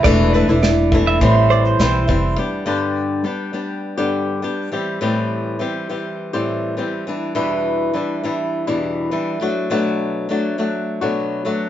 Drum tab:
SH |x-xxx-x-x-xxx-x-|----------------|----------------|----------------|
SD |----o-------o---|----------------|----------------|----------------|
BD |o-----o-o-----o-|----------------|----------------|----------------|

SH |----------------|
SD |----------------|
BD |----------------|